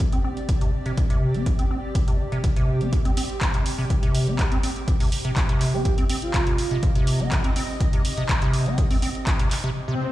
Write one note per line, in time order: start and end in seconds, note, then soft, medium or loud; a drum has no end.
0.00 9.75 C4 medium
0.00 9.75 G4 medium
0.00 5.36 D5 medium
0.00 kick loud
0.12 0.19 C4 medium
0.12 closed hi-hat soft
0.24 0.31 C4 medium
0.37 closed hi-hat soft
0.49 kick loud
0.49 closed hi-hat medium
0.61 0.71 C3 medium
0.61 closed hi-hat soft
0.86 0.92 C3 loud
0.86 closed hi-hat soft
0.97 kick loud
0.97 closed hi-hat medium
1.10 1.36 C3 loud
1.10 closed hi-hat soft
1.34 1.48 C4 loud
1.34 closed hi-hat soft
1.46 1.53 A#2 medium
1.46 kick loud
1.46 closed hi-hat medium
1.59 1.65 C4 medium
1.59 closed hi-hat soft
1.71 1.78 C4 medium
1.95 kick loud
1.95 closed hi-hat medium
2.08 2.17 C3 medium
2.08 closed hi-hat soft
2.32 2.39 C3 medium
2.32 closed hi-hat soft
2.44 kick loud
2.44 closed hi-hat medium
2.56 2.82 C3 loud
2.56 closed hi-hat soft
2.81 2.94 C4 loud
2.81 closed hi-hat soft
2.93 3.00 A#2 medium
2.93 kick loud
2.93 closed hi-hat medium
3.05 3.12 C4 medium
3.05 closed hi-hat soft
3.17 3.24 C4 medium
3.17 open hi-hat loud
3.30 closed hi-hat soft
3.41 kick loud
3.41 clap loud
3.41 closed hi-hat medium
3.54 3.64 C3 medium
3.54 closed hi-hat soft
3.66 open hi-hat loud
3.78 3.85 C3 loud
3.90 kick loud
3.90 closed hi-hat medium
4.03 4.29 C3 medium
4.03 closed hi-hat soft
4.15 open hi-hat loud
4.27 4.40 C4 loud
4.27 closed hi-hat soft
4.39 4.46 A#2 medium
4.39 kick loud
4.39 clap loud
4.39 closed hi-hat medium
4.51 4.58 C4 medium
4.51 closed hi-hat soft
4.63 4.70 C4 medium
4.63 open hi-hat loud
4.76 closed hi-hat soft
4.88 kick loud
4.88 closed hi-hat medium
5.00 5.10 C3 medium
5.00 open hi-hat medium
5.12 open hi-hat medium
5.22 5.31 C3 loud
5.22 9.76 D#5 medium
5.22 closed hi-hat soft
5.36 kick loud
5.36 clap loud
5.36 closed hi-hat medium
5.49 5.75 C3 loud
5.49 closed hi-hat soft
5.61 clap soft
5.61 open hi-hat loud
5.73 5.87 C4 loud
5.73 5.81 G4 medium
5.85 5.92 A#2 medium
5.85 5.93 G4 medium
5.85 kick loud
5.85 closed hi-hat medium
5.98 6.04 C4 medium
5.98 closed hi-hat soft
6.10 6.17 C4 medium
6.10 open hi-hat loud
6.22 6.90 F4 medium
6.22 closed hi-hat soft
6.34 kick loud
6.34 clap loud
6.34 closed hi-hat medium
6.47 6.56 C3 medium
6.47 closed hi-hat soft
6.58 open hi-hat loud
6.71 6.78 C3 loud
6.83 kick loud
6.83 closed hi-hat medium
6.95 7.21 C3 loud
6.95 closed hi-hat soft
7.07 open hi-hat loud
7.20 7.33 C4 loud
7.20 closed hi-hat soft
7.32 7.39 A#2 medium
7.32 kick loud
7.32 clap loud
7.32 closed hi-hat medium
7.44 7.51 C4 medium
7.44 closed hi-hat soft
7.56 7.63 C4 medium
7.56 open hi-hat loud
7.80 kick loud
7.80 closed hi-hat medium
7.93 8.03 C3 medium
7.93 closed hi-hat medium
8.05 open hi-hat medium
8.17 8.24 C3 loud
8.17 closed hi-hat soft
8.29 kick loud
8.29 clap loud
8.29 closed hi-hat medium
8.42 8.68 C3 loud
8.42 closed hi-hat medium
8.54 open hi-hat loud
8.66 8.79 C4 loud
8.66 closed hi-hat soft
8.78 8.85 A#2 medium
8.78 kick loud
8.78 closed hi-hat medium
8.90 8.97 C4 medium
8.90 open hi-hat medium
9.02 9.09 C4 medium
9.02 open hi-hat loud
9.15 closed hi-hat soft
9.27 kick loud
9.27 clap loud
9.27 closed hi-hat medium
9.39 9.49 C3 medium
9.39 closed hi-hat medium
9.51 clap soft
9.51 open hi-hat loud
9.64 9.70 C3 loud
9.64 closed hi-hat soft
9.75 swell medium
9.88 9.95 C3 loud